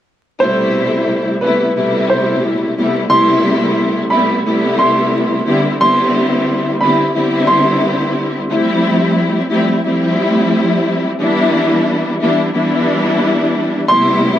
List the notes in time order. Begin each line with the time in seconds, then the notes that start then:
0.40 B2 C3 G3 A3 E4 C5
1.41 C3 G3 A3 B3 E4 B4
1.76 B2 C3 G3 A3 E4
2.10 C5
2.77 C3 G3 A3 B3 E4
3.09 C3 G3 A3 B3 E4 C6
4.10 C3 G3 A3 B3 E4 B5
4.45 C3 G3 A3 B3 E4
4.79 C6
5.46 D3 G3 B3 C4 E4
5.80 D3 G3 B3 C4 E4 C6
6.81 D3 G3 B3 C4 E4 B5
7.15 D3 G3 B3 C4 E4
7.47 C6
8.49 F3 G3 A3 C4 E4
9.50 F3 G3 A3 C4 E4
9.85 F3 G3 A3 C4 E4
11.20 E3 G3 B3 D4 E4
12.21 E3 G3 B3 D4 E4
12.54 E3 G3 B3 D4 E4
13.87 C3 G3 A3 B3 E4 C6